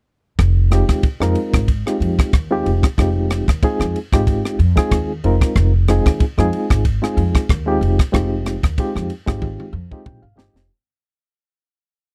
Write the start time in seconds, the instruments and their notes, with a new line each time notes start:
0.39 upright bass F1, kick, cross-stick, ride
0.71 reed electric piano G#3 C4 D#4 F4 G4, cross-stick, ride
0.89 upright bass D#2, kick, cross-stick, ride
1.03 kick, ride
1.20 upright bass F2, reed electric piano G#3 C4 D#4 F4 A#4, cross-stick
1.35 ride
1.54 upright bass G#1, kick, cross-stick, ride
1.68 kick, ride
1.86 reed electric piano G#3 C4 D#4 F4 G4, cross-stick
2.00 upright bass F2, ride
2.18 muted upright bass stroke, kick, cross-stick, ride
2.33 upright bass D#2, kick, cross-stick, ride
2.51 reed electric piano G#3 C4 D#4 F4 G4
2.66 upright bass F1, ride
2.83 kick, cross-stick, ride
2.98 upright bass F1, reed electric piano G#3 C4 D#4 F4 G4, kick, cross-stick, ride
3.30 cross-stick, ride
3.48 upright bass D#2, kick, cross-stick, ride
3.63 reed electric piano G#3 C4 D#4 F4 G#4, kick, ride
3.80 upright bass F2, cross-stick
3.96 ride
4.12 upright bass G#1, reed electric piano G#3 C4 D#4 F4 G4, kick, cross-stick, ride
4.27 kick, ride
4.45 cross-stick
4.59 upright bass F2, ride
4.76 reed electric piano G#3 C4 D#4 F4 G#4, muted upright bass stroke, kick, cross-stick, ride
4.91 upright bass D#2, kick, cross-stick, ride
5.24 upright bass F1, reed electric piano G#3 C4 D#4 F4 A#4, ride
5.41 kick, cross-stick, ride
5.55 upright bass F1, kick, cross-stick, ride
5.88 reed electric piano G#3 C4 D#4 F4 G#4, cross-stick, ride
6.06 upright bass D#2, kick, cross-stick, ride
6.20 kick, ride
6.38 upright bass F2, reed electric piano G#3 C4 D#4 F4 G#4, cross-stick
6.53 ride
6.70 upright bass G#1, kick, cross-stick, ride
6.85 kick, ride
7.02 reed electric piano G#3 C4 D#4 F4 G#4, cross-stick
7.17 upright bass F2, ride
7.35 muted upright bass stroke, kick, cross-stick, ride
7.49 upright bass D#2, kick, cross-stick, ride
7.66 reed electric piano G#3 C4 D#4 F4 G4
7.81 upright bass F1, ride
7.99 kick, cross-stick, ride
8.12 upright bass F1, reed electric piano G#3 C4 D#4 F4 G4, kick, cross-stick, ride
8.46 cross-stick, ride
8.63 upright bass D#2, kick, cross-stick, ride
8.78 reed electric piano G#3 C4 D#4 F4 G4, kick, ride
8.95 upright bass F2, cross-stick
9.10 ride
9.26 upright bass G#1, reed electric piano G#3 C4 D#4 F4 G4, kick, cross-stick, ride
9.42 kick, high tom
9.60 high tom
9.73 upright bass F2
9.91 reed electric piano G#3 C4 D#4 F4 G4, kick
10.06 upright bass A#1, reed electric piano G5, kick, mid tom
10.22 upright bass G#1, reed electric piano F5
10.36 upright bass G1, reed electric piano G#3 C4 D#4 F4 G4 D#5, snare
10.54 upright bass F1, snare